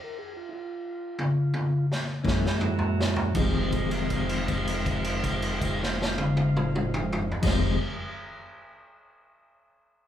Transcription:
0.04 tonewheel organ A#4
0.19 tonewheel organ G#4
0.37 tonewheel organ F4
0.49 tonewheel organ E4
0.53 tonewheel organ F4
1.19 high tom
1.54 high tom
1.92 snare
2.24 clean electric guitar F#2 E3 A#3 C#4, upright bass F#2, tonewheel organ G#3 A#3 E4, grand piano E4 G#4 A#4 C#5, horn section E5 F#5 A#5, kick, snare
2.28 tonewheel organ G#4
2.46 snare
2.61 grand piano E4 G#4 A#4 C#5, tonewheel organ F#4, mid tom
2.79 floor tom
2.98 grand piano E4 G#4 A#4 C#5, snare
3.16 floor tom
3.33 upright bass F1, clean electric guitar F2 D#3, tonewheel organ G#3 D#4 F4 C5, grand piano D#4 G4 G#4, horn section D#5 F5, kick, crash
3.38 clean electric guitar G#3 C4, grand piano C5
3.72 kick, crash
3.91 crash
4.10 kick, crash
4.29 crash
4.48 kick, crash
4.67 crash
4.86 kick, crash
5.04 crash
5.24 kick, crash
5.42 crash
5.61 kick, crash
5.83 snare
6.02 snare
6.18 high tom
6.37 high tom
6.57 mid tom
6.76 mid tom
6.94 mid tom
7.13 mid tom
7.32 floor tom
7.41 upright bass F1, clean electric guitar F2 D#3, tonewheel organ G#3 D#4 F4 C5, grand piano D#4 G4 G#4 C5, horn section G#4 D#5 F5, kick, crash
7.45 clean electric guitar G#3 C4, snare

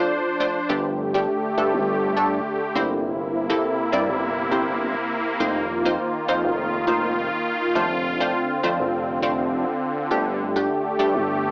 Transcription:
Already playing: synth stab F2 A3 D4 F4 C5, analog synth pad F3 D4 C5
0.40 synth stab F2 A3 D4 F4 C5
0.69 analog synth bass G1, analog synth pad D3 A3 G4, synth stab A3 D4 G4
1.14 synth stab A3 D4 G4
1.57 analog synth bass G2, synth stab A3 D4 A4
1.73 analog synth bass G1
2.16 synth stab A3 D4 A4
2.75 analog synth bass G1, analog synth pad C3 A#3 E4, synth stab A#3 C4 E4 G4 C5
3.50 synth stab A#3 C4 E4 G4 A4
3.92 analog synth bass G2, synth stab A#3 C4 E4 G4 D5
4.09 analog synth bass G1
4.51 synth stab A#3 C4 E4 G4 C5
5.40 analog synth bass F1, analog synth pad D#3 F4, synth stab A#3 C4 D#4 F4 C5
5.85 synth stab A#3 C4 D#4 F4 C5
6.28 analog synth bass F2, synth stab A#3 C4 D#4 F4 C5
6.44 analog synth bass F1
6.87 synth stab A#3 C4 D#4 F4 C5
7.75 analog synth bass F1, analog synth pad D3 C4, synth stab A3 C4 D4 F4 C5
8.20 synth stab A3 C4 D4 F4 C5
8.63 analog synth bass F2, synth stab A3 C4 D4 F4 C5
8.79 analog synth bass F1
9.22 synth stab A3 C4 D4 F4 C5
10.11 analog synth bass G1, synth stab A3 D4 G4, analog synth pad A3 G4
10.56 synth stab A3 D4 G4
10.99 analog synth bass G2, synth stab A3 D4 G4
11.15 analog synth bass G1

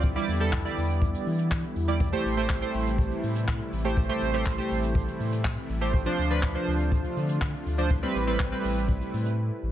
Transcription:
Already playing: sub bass D2, supersaw synth D3
0.04 supersaw synth E3 G3 B3 E4, kick
0.16 synth keys G3 E4 D5, closed hi-hat
0.28 sub bass E2, open hi-hat
0.40 synth keys G3 E4 A4, closed hi-hat
0.53 kick, clap
0.65 synth keys G3 E4 D5, closed hi-hat
0.77 sub bass E2, open hi-hat
0.90 closed hi-hat
1.02 kick
1.14 closed hi-hat
1.27 sub bass E3, open hi-hat
1.39 closed hi-hat
1.51 kick, clap
1.64 closed hi-hat
1.76 sub bass E2, open hi-hat
1.88 synth keys G3 E4 D5, closed hi-hat
2.00 supersaw synth C3 A3, kick
2.12 synth keys A3 G4 C5, closed hi-hat
2.25 sub bass A1, open hi-hat
2.37 synth keys A3 G4 C5, closed hi-hat
2.49 kick, clap
2.62 synth keys A3 G4 C5, closed hi-hat
2.74 sub bass A1, open hi-hat
2.87 closed hi-hat
2.98 kick
3.11 closed hi-hat
3.23 sub bass A2, open hi-hat
3.36 closed hi-hat
3.48 kick, clap
3.60 closed hi-hat
3.72 sub bass A1, open hi-hat
3.85 synth keys A3 G4 C5, closed hi-hat
3.97 kick
4.09 synth keys A3 G4 C5, closed hi-hat
4.21 sub bass A1, open hi-hat
4.34 synth keys A3 G4 C5, closed hi-hat
4.46 kick, clap
4.58 synth keys A3 G4 C5, closed hi-hat
4.71 sub bass A1, open hi-hat
4.83 closed hi-hat
4.95 kick
5.08 closed hi-hat
5.20 sub bass A2, open hi-hat
5.32 closed hi-hat
5.45 kick, clap
5.57 closed hi-hat
5.69 sub bass A1, open hi-hat
5.81 synth keys A3 G4 C5, closed hi-hat
5.94 supersaw synth F3 A3 D4 F4, kick
6.06 synth keys F3 D4 C5, closed hi-hat
6.18 sub bass D2, open hi-hat
6.30 synth keys F3 D4 B4, closed hi-hat
6.43 kick, clap
6.55 synth keys F3 D4 C5, closed hi-hat
6.68 sub bass D2, open hi-hat
6.80 closed hi-hat
6.92 kick
7.04 closed hi-hat
7.17 sub bass D3, open hi-hat
7.29 closed hi-hat
7.41 kick, clap
7.54 closed hi-hat
7.66 sub bass D2, open hi-hat
7.78 synth keys F3 D4 C5, closed hi-hat
7.90 supersaw synth G3 A3 E4 B4, kick
8.03 synth keys G3 C4 B4, closed hi-hat
8.15 sub bass A1, open hi-hat
8.27 synth keys G3 C4 B4, closed hi-hat
8.40 kick, clap
8.52 synth keys G3 C4 B4, closed hi-hat
8.64 sub bass A1, open hi-hat
8.77 closed hi-hat
8.89 kick
9.01 closed hi-hat
9.13 sub bass A2, open hi-hat
9.26 closed hi-hat
9.63 sub bass A1

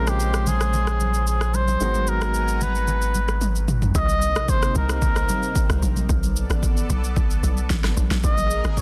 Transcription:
Already playing: analog synth bass A#1, grand piano C#3 G#3 A#3 C4 F4, analog synth pad G#3 C5 C6
0.07 muted trumpet G4, cross-stick, shaker
0.20 shaker
0.34 cross-stick, shaker
0.47 muted trumpet G#4, high conga, low conga, shaker
0.61 cross-stick, shaker
0.73 low conga, shaker
0.87 cross-stick, shaker
1.00 high conga, shaker
1.14 shaker
1.27 muted trumpet G#4, shaker
1.41 cross-stick, shaker
1.54 muted trumpet C5, high conga, shaker
1.68 high conga, shaker
1.80 analog synth bass G#1, grand piano D#3 F#3 G#3 B3 F#4, analog synth pad F#5 G#5 A#5, shaker
1.94 high conga, shaker
2.07 muted trumpet A#4, shaker
2.21 cross-stick, shaker
2.34 shaker
2.48 shaker
2.61 muted trumpet B4, high conga, low conga, shaker
2.75 shaker
2.88 low conga, shaker
3.02 shaker
3.15 high conga, shaker
3.28 cross-stick, shaker
3.41 high tom, shaker
3.56 shaker
3.68 mid tom, high conga, shaker
3.82 floor tom, high conga, shaker
3.95 log drum bass C2, analog synth pad C3 A#3 C4 D#4, muted trumpet D#5, kick, shaker
4.09 high conga, shaker
4.22 shaker
4.35 log drum bass A#1, cross-stick, shaker
4.48 muted trumpet C5, kick, shaker
4.62 cross-stick, shaker
4.75 log drum bass C2, muted trumpet A#4, high conga, low conga, shaker
4.89 muted trumpet A#4, cross-stick, shaker
5.02 kick, low conga, shaker
5.16 cross-stick, shaker
5.29 high conga, shaker
5.43 shaker
5.56 kick, shaker
5.70 log drum bass C2, cross-stick, shaker
5.82 log drum bass A#1, high conga, shaker
5.97 high conga, shaker
6.09 log drum bass B1, analog synth pad B3 A4 D5, kick, shaker
6.23 high conga, shaker
6.36 shaker
6.50 log drum bass A1, cross-stick, shaker
6.63 kick, shaker
6.77 shaker
6.90 log drum bass B1, high conga, low conga, shaker
7.04 shaker
7.16 kick, low conga, shaker
7.31 shaker
7.43 log drum bass B1, high conga, shaker
7.57 shaker
7.70 log drum bass A1, kick, snare, shaker
7.84 cross-stick, snare, shaker
7.97 log drum bass A#1, analog synth pad A#3 G#4 A#4, high conga, shaker
8.11 log drum bass A#1, snare, high conga, shaker
8.24 log drum bass A#1, muted trumpet D#5, kick, shaker
8.37 high conga, shaker
8.51 shaker
8.64 log drum bass G#1, cross-stick, shaker
8.71 muted trumpet D#5
8.77 muted trumpet C#5, kick, shaker

